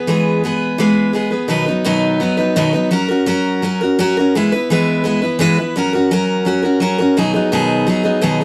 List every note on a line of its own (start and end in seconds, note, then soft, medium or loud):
0.07 0.43 E3 medium
0.07 0.42 G#3 medium
0.07 0.44 B3 medium
0.07 0.44 G#4 medium
0.07 0.44 B4 medium
0.43 0.78 G#3 medium
0.43 0.78 B3 medium
0.43 0.79 G#4 medium
0.43 0.80 B4 medium
0.78 1.14 E3 loud
0.78 1.12 G#3 loud
0.78 1.13 B3 medium
0.78 1.14 G#4 medium
0.78 1.15 B4 medium
1.13 1.32 G#3 medium
1.13 1.32 B3 medium
1.13 1.31 G#4 medium
1.13 1.29 B4 medium
1.31 1.48 B3 soft
1.31 1.50 G#4 soft
1.31 1.49 B4 soft
1.48 1.67 B2 medium
1.48 1.67 D#3 medium
1.48 1.67 F#3 medium
1.48 1.67 B3 medium
1.48 1.67 D#4 medium
1.48 1.65 B4 loud
1.66 1.84 B3 medium
1.66 1.85 D#4 soft
1.66 1.85 B4 medium
1.71 1.84 F#3 soft
1.84 2.21 B2 medium
1.84 2.20 D#3 medium
1.84 2.19 F#3 medium
1.84 2.20 B3 medium
1.84 2.21 D#4 loud
1.84 2.21 B4 loud
2.20 2.38 F#3 medium
2.20 2.39 B3 medium
2.20 2.37 D#4 medium
2.20 2.36 B4 medium
2.37 2.55 F#3 soft
2.37 2.56 B3 soft
2.37 2.56 D#4 medium
2.37 2.56 B4 medium
2.56 2.74 B2 medium
2.56 2.74 D#3 loud
2.56 2.74 F#3 loud
2.56 2.74 B3 loud
2.56 2.73 D#4 loud
2.56 2.72 B4 loud
2.73 2.89 F#3 soft
2.73 2.91 B3 soft
2.73 2.91 D#4 medium
2.73 2.91 B4 medium
2.91 3.09 F#3 medium
2.91 3.09 C#4 medium
2.91 3.10 F#4 medium
2.91 3.07 A#4 medium
3.08 3.26 C#4 soft
3.08 3.27 F#4 medium
3.08 3.27 A#4 medium
3.26 3.61 F#3 medium
3.26 3.62 C#4 loud
3.26 3.63 F#4 medium
3.26 3.63 A#4 medium
3.62 3.80 F#3 medium
3.62 3.81 C#4 medium
3.62 3.81 F#4 medium
3.62 3.80 A#4 medium
3.81 3.98 C#4 soft
3.81 3.99 F#4 soft
3.81 3.98 A#4 medium
3.99 4.16 F#3 loud
3.99 4.16 C#4 loud
3.99 4.17 F#4 loud
3.99 4.16 A#4 medium
4.17 4.36 C#4 soft
4.17 4.35 F#4 medium
4.17 4.34 A#4 medium
4.35 4.52 E3 medium
4.35 4.52 G#3 medium
4.35 4.53 B3 medium
4.35 4.53 E4 medium
4.35 4.51 B4 loud
4.52 4.70 B3 soft
4.52 4.70 E4 medium
4.52 4.69 B4 medium
4.70 5.05 E3 loud
4.70 5.02 G#3 medium
4.70 5.04 B3 loud
4.70 5.04 E4 loud
4.70 5.06 B4 medium
5.04 5.22 G#3 medium
5.04 5.22 B3 medium
5.04 5.22 E4 medium
5.04 5.21 B4 medium
5.22 5.39 B3 soft
5.22 5.40 E4 medium
5.22 5.40 B4 medium
5.39 5.57 E3 loud
5.39 5.58 G#3 loud
5.39 5.58 B3 loud
5.39 5.58 E4 loud
5.39 5.57 B4 loud
5.58 5.76 B3 soft
5.58 5.76 E4 medium
5.58 5.76 B4 medium
5.76 5.93 F#3 medium
5.76 5.94 C#4 medium
5.76 5.94 F#4 medium
5.76 5.92 A#4 medium
5.93 6.10 C#4 soft
5.93 6.12 F#4 medium
5.93 6.11 A#4 medium
6.11 6.45 F#3 medium
6.11 6.45 C#4 medium
6.11 6.46 F#4 medium
6.11 6.47 A#4 loud
6.45 6.63 F#3 medium
6.45 6.64 C#4 medium
6.45 6.63 F#4 medium
6.45 6.61 A#4 medium
6.62 6.80 C#4 soft
6.62 6.81 F#4 soft
6.62 6.81 A#4 medium
6.80 6.98 F#3 medium
6.80 6.99 C#4 loud
6.80 6.99 F#4 loud
6.80 6.97 A#4 loud
6.98 7.18 C#4 soft
6.98 7.17 F#4 medium
6.98 7.16 A#4 medium
7.17 7.35 B2 medium
7.17 7.35 D#3 medium
7.17 7.35 F#3 medium
7.17 7.35 B3 medium
7.17 7.33 D#4 medium
7.17 7.32 G#4 medium
7.34 7.52 F#3 soft
7.34 7.52 B3 medium
7.34 7.52 D#4 medium
7.34 7.52 G#4 medium
7.52 7.88 B2 medium
7.52 7.87 D#3 medium
7.52 7.86 F#3 medium
7.52 7.87 B3 medium
7.52 7.88 D#4 loud
7.52 7.88 G#4 loud
7.87 8.05 F#3 medium
7.87 8.04 B3 medium
7.87 8.03 D#4 medium
7.87 8.02 G#4 medium
8.03 8.21 F#3 soft
8.03 8.22 B3 soft
8.03 8.22 D#4 medium
8.03 8.22 G#4 medium
8.21 8.40 B2 medium
8.21 8.40 D#3 loud
8.21 8.40 F#3 medium
8.21 8.41 B3 loud
8.21 8.40 D#4 loud
8.21 8.40 G#4 loud
8.41 8.44 G#4 medium